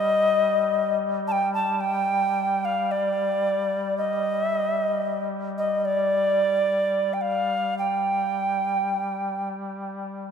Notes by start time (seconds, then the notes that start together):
Already playing: G3 D#5
1.28 A5
1.32 G5
1.54 A5
1.80 G5
2.65 F5
2.91 D5
3.98 D#5
4.44 E5
4.57 D#5
4.70 E5
4.83 D#5
5.58 D#5
5.85 D5
7.13 G5
7.21 F5
7.79 G5